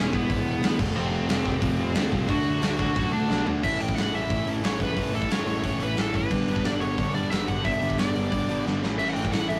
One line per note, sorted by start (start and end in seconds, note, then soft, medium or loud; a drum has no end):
0.00 0.11 E1 loud
0.00 0.12 E3 medium
0.00 0.11 G#3 medium
0.00 0.11 B3 medium
0.00 0.13 C#4 loud
0.00 0.11 E4 medium
0.12 0.27 E1 loud
0.12 0.28 E3 medium
0.12 0.28 G#3 medium
0.12 0.28 B3 medium
0.12 0.76 B3 loud
0.12 0.29 E4 loud
0.12 kick medium
0.29 0.44 G#1 medium
0.29 0.61 E3 loud
0.29 0.62 G#3 loud
0.29 0.62 B3 loud
0.29 0.62 E4 medium
0.29 kick loud
0.29 open hi-hat medium
0.46 0.60 E1 loud
0.62 0.77 D2 loud
0.62 0.78 E3 medium
0.62 0.78 G#3 medium
0.62 0.79 B3 medium
0.62 0.79 E4 medium
0.62 snare loud
0.62 open hi-hat medium
0.79 0.94 F1 medium
0.79 0.95 F3 loud
0.79 0.96 A3 loud
0.79 0.95 C4 loud
0.79 0.94 F4 loud
0.79 kick loud
0.79 crash loud
0.95 1.25 F1 medium
0.95 1.27 F2 medium
0.95 1.27 C3 medium
0.95 1.28 F3 medium
0.95 1.29 A3 medium
0.95 1.28 C4 loud
0.95 2.33 C4 loud
0.95 1.28 F4 loud
1.28 1.44 F1 loud
1.28 1.44 F2 medium
1.28 1.44 C3 medium
1.28 1.45 F3 medium
1.28 1.46 A3 medium
1.28 1.45 C4 medium
1.28 1.45 F4 medium
1.28 snare loud
1.28 open hi-hat medium
1.45 1.60 F1 medium
1.45 1.61 F2 medium
1.45 1.61 C3 medium
1.45 1.62 F3 medium
1.45 1.63 A3 medium
1.45 1.62 C4 loud
1.45 1.61 F4 medium
1.45 kick medium
1.62 1.77 F1 loud
1.62 1.94 F2 medium
1.62 1.94 C3 medium
1.62 1.94 F3 medium
1.62 1.95 A3 medium
1.62 1.94 C4 loud
1.62 1.93 F4 loud
1.62 kick loud
1.62 open hi-hat medium
1.79 1.94 F1 medium
1.95 2.10 D2 medium
1.95 2.11 F2 medium
1.95 2.10 C3 medium
1.95 2.12 F3 medium
1.95 2.13 A3 medium
1.95 2.12 C4 medium
1.95 2.13 F4 loud
1.95 snare loud
1.95 open hi-hat medium
2.12 2.27 C2 medium
2.12 2.28 F2 medium
2.12 2.27 C3 medium
2.12 2.28 F3 medium
2.12 2.29 A3 medium
2.12 2.28 C4 loud
2.12 2.29 F4 loud
2.12 kick medium
2.28 2.44 D2 loud
2.28 2.61 D3 medium
2.28 2.61 A3 medium
2.28 2.62 D4 medium
2.28 2.63 F#4 medium
2.28 3.12 F#4 loud
2.28 kick loud
2.28 open hi-hat medium
2.45 2.60 D2 medium
2.62 2.77 D2 loud
2.62 2.77 D3 medium
2.62 2.78 A3 medium
2.62 2.77 D4 medium
2.62 2.77 F#4 medium
2.62 snare loud
2.62 open hi-hat medium
2.78 2.94 D2 loud
2.78 2.93 D3 medium
2.78 2.93 A3 medium
2.78 2.94 D4 medium
2.78 2.94 F#4 loud
2.78 kick loud
2.95 3.11 F#2 medium
2.95 3.27 D3 loud
2.95 3.28 A3 medium
2.95 3.28 D4 loud
2.95 3.28 F#4 loud
2.95 kick loud
2.95 open hi-hat medium
3.13 3.28 D2 medium
3.13 3.44 D4 medium
3.28 3.45 B1 loud
3.28 3.46 D3 medium
3.28 3.45 A3 medium
3.28 3.45 D4 medium
3.28 3.45 F#4 medium
3.28 snare medium
3.46 3.61 D2 medium
3.46 3.62 D3 medium
3.46 3.62 A3 medium
3.46 3.62 D4 medium
3.46 3.62 F#4 loud
3.46 floor tom medium
3.63 3.78 A1 medium
3.63 3.81 A2 medium
3.63 3.81 E3 medium
3.63 3.80 A3 medium
3.63 3.80 C#4 medium
3.63 3.80 E4 medium
3.63 3.80 E5 loud
3.63 kick medium
3.63 crash loud
3.80 3.95 A1 medium
3.80 3.96 A2 medium
3.80 3.97 E3 medium
3.80 3.97 A3 medium
3.80 3.98 C#4 medium
3.80 3.98 E4 medium
3.80 3.95 G5 loud
3.80 open hi-hat medium
3.88 kick loud
3.96 4.11 A1 medium
3.96 4.14 A2 medium
3.96 4.14 E3 medium
3.96 4.14 A3 medium
3.96 4.14 C#4 medium
3.96 4.13 E4 medium
3.96 4.15 F#5 loud
3.96 snare loud
3.96 open hi-hat medium
4.13 4.27 A1 medium
4.13 4.28 A2 medium
4.13 4.29 E3 medium
4.13 4.30 A3 medium
4.13 4.30 C#4 medium
4.13 4.30 E4 loud
4.13 4.47 E5 loud
4.13 open hi-hat medium
4.30 4.59 A1 medium
4.30 4.47 A2 medium
4.30 4.46 E3 medium
4.30 4.46 A3 medium
4.30 4.45 C#4 medium
4.30 4.45 E4 medium
4.30 kick loud
4.30 open hi-hat medium
4.46 4.61 A2 medium
4.46 4.62 E3 medium
4.46 4.62 A3 medium
4.46 4.62 C#4 medium
4.46 4.63 E4 medium
4.46 open hi-hat medium
4.63 4.78 A1 medium
4.63 4.80 A2 medium
4.63 4.80 E3 medium
4.63 4.79 A3 medium
4.63 4.79 C#4 medium
4.63 4.79 E4 medium
4.63 4.81 C#5 medium
4.63 snare loud
4.63 open hi-hat medium
4.80 4.95 A1 medium
4.80 4.95 A2 medium
4.80 4.95 E3 medium
4.80 4.96 A3 medium
4.80 4.96 C#4 medium
4.80 4.97 E4 medium
4.80 5.15 B4 medium
4.80 kick medium
4.80 open hi-hat medium
4.96 5.11 A1 medium
4.96 5.13 A2 medium
4.96 5.12 E3 medium
4.96 5.12 A3 medium
4.96 5.12 C#4 medium
4.96 5.11 E4 medium
4.96 kick loud
4.96 open hi-hat medium
5.12 5.27 A1 loud
5.12 5.28 A2 medium
5.12 5.28 E3 medium
5.12 5.29 A3 medium
5.12 5.29 C#4 medium
5.12 5.29 E4 medium
5.12 5.32 A4 medium
5.12 open hi-hat medium
5.22 kick medium
5.29 5.45 A1 medium
5.29 5.46 A2 medium
5.29 5.46 E3 medium
5.29 5.45 A3 medium
5.29 5.46 C#4 medium
5.29 5.45 E4 medium
5.29 5.47 C#5 loud
5.29 snare loud
5.29 open hi-hat medium
5.46 5.61 A1 medium
5.46 5.62 A2 medium
5.46 5.62 E3 medium
5.46 5.63 A3 loud
5.46 5.63 C#4 loud
5.46 5.63 E4 loud
5.46 5.82 C#5 medium
5.46 open hi-hat medium
5.63 5.92 A1 medium
5.63 5.80 A2 medium
5.63 5.79 E3 medium
5.63 5.79 A3 medium
5.63 5.79 C#4 medium
5.63 5.79 E4 medium
5.63 kick loud
5.63 open hi-hat medium
5.80 5.95 A2 medium
5.80 5.96 E3 medium
5.80 5.96 A3 medium
5.80 5.96 C#4 medium
5.80 5.96 E4 medium
5.80 5.99 B4 medium
5.80 open hi-hat medium
5.96 6.12 A1 loud
5.96 6.14 A2 medium
5.96 6.14 E3 loud
5.96 6.14 A3 medium
5.96 6.14 C#4 medium
5.96 6.13 E4 medium
5.96 6.14 A4 medium
5.96 snare loud
5.96 open hi-hat medium
6.14 6.28 G1 medium
6.14 6.30 A2 medium
6.14 6.31 E3 medium
6.14 6.30 A3 medium
6.14 6.30 C#4 medium
6.14 6.30 E4 medium
6.14 6.67 B4 medium
6.14 kick medium
6.14 open hi-hat medium
6.30 6.45 G1 medium
6.30 6.49 G2 medium
6.30 6.48 D3 medium
6.30 6.49 G3 medium
6.30 6.48 B3 medium
6.30 6.48 D4 loud
6.30 kick loud
6.30 crash loud
6.48 6.62 G1 medium
6.48 6.64 G2 medium
6.48 6.64 D3 medium
6.48 6.65 G3 medium
6.48 6.65 B3 medium
6.48 6.65 D4 medium
6.48 open hi-hat medium
6.56 kick loud
6.64 6.79 G1 medium
6.64 6.81 G2 medium
6.64 6.81 D3 medium
6.64 6.81 G3 medium
6.64 6.80 B3 medium
6.64 6.80 D4 medium
6.64 6.71 D5 loud
6.64 snare loud
6.64 open hi-hat medium
6.81 6.96 G1 medium
6.81 6.97 G2 medium
6.81 6.98 D3 medium
6.81 6.98 G3 loud
6.81 6.98 B3 medium
6.81 6.99 D4 medium
6.81 7.14 C#5 medium
6.81 open hi-hat medium
6.98 7.27 G1 medium
6.98 7.15 G2 medium
6.98 7.15 D3 medium
6.98 7.15 G3 medium
6.98 7.14 B3 medium
6.98 7.13 D4 medium
6.98 kick loud
6.98 open hi-hat medium
7.15 7.30 G2 medium
7.15 7.31 D3 medium
7.15 7.31 G3 medium
7.15 7.31 B3 medium
7.15 7.32 D4 medium
7.15 7.30 D5 medium
7.15 open hi-hat medium
7.30 7.46 G1 loud
7.30 7.49 G2 medium
7.30 7.48 D3 medium
7.30 7.49 G3 loud
7.30 7.48 B3 medium
7.30 7.48 D4 medium
7.30 7.48 E5 medium
7.30 snare loud
7.30 open hi-hat medium
7.48 7.63 G1 medium
7.48 7.64 G2 medium
7.48 7.64 D3 medium
7.48 7.64 G3 medium
7.48 7.65 B3 medium
7.48 7.65 D4 medium
7.48 7.65 F#5 medium
7.48 kick medium
7.48 open hi-hat medium
7.65 7.80 G1 medium
7.65 7.82 G2 medium
7.65 7.81 D3 medium
7.65 7.81 G3 medium
7.65 7.81 B3 medium
7.65 7.80 D4 medium
7.65 7.96 E5 loud
7.65 kick loud
7.65 open hi-hat medium
7.82 7.96 G1 medium
7.82 7.96 G2 medium
7.82 7.97 D3 medium
7.82 7.97 G3 medium
7.82 7.97 B3 medium
7.82 7.98 D4 medium
7.82 open hi-hat medium
7.90 kick medium
7.97 8.14 G1 loud
7.97 8.14 G2 medium
7.97 8.14 D3 medium
7.97 8.14 G3 medium
7.97 8.13 B3 medium
7.97 8.13 D4 medium
7.97 8.62 D5 medium
7.97 snare loud
7.97 open hi-hat medium
8.14 8.30 G1 medium
8.14 8.30 G2 medium
8.14 8.31 D3 medium
8.14 8.31 G3 medium
8.14 8.32 B3 medium
8.14 8.32 D4 loud
8.14 open hi-hat medium
8.32 8.61 G1 medium
8.32 8.49 G2 medium
8.32 8.49 D3 medium
8.32 8.48 G3 medium
8.32 8.48 B3 medium
8.32 8.48 D4 loud
8.32 kick loud
8.32 open hi-hat medium
8.49 8.65 G2 medium
8.49 8.65 D3 medium
8.49 8.66 G3 medium
8.49 8.65 B3 medium
8.49 8.66 D4 medium
8.49 open hi-hat medium
8.66 8.80 G1 loud
8.66 8.81 G2 medium
8.66 8.81 D3 medium
8.66 8.82 G3 medium
8.66 8.82 B3 medium
8.66 8.82 D4 loud
8.66 snare medium
8.81 8.98 A1 medium
8.81 9.00 A2 medium
8.81 8.99 E3 loud
8.81 8.99 A3 loud
8.81 8.98 C#4 loud
8.81 8.98 E4 loud
8.81 snare medium
8.99 9.15 A1 medium
8.99 9.16 A2 medium
8.99 9.16 E3 medium
8.99 9.17 A3 medium
8.99 9.17 C#4 medium
8.99 9.18 E4 medium
8.99 9.09 E5 loud
8.99 crash medium
9.10 9.14 F#5 medium
9.14 9.31 A1 medium
9.14 9.34 A2 medium
9.14 9.34 E3 medium
9.14 9.33 A3 medium
9.14 9.33 C#4 medium
9.14 9.33 E4 loud
9.14 9.31 G5 loud
9.14 open hi-hat medium
9.25 kick loud
9.32 9.48 A1 medium
9.32 9.48 A2 medium
9.32 9.49 E3 medium
9.32 9.50 A3 medium
9.32 9.49 C#4 medium
9.32 9.49 E4 medium
9.32 9.49 F#5 medium
9.32 snare loud
9.32 open hi-hat medium
9.49 9.60 A1 medium
9.49 9.60 A2 medium
9.49 9.60 E3 loud
9.49 9.60 A3 medium
9.49 9.60 C#4 loud
9.49 9.60 E4 loud
9.49 9.60 E5 loud
9.49 open hi-hat medium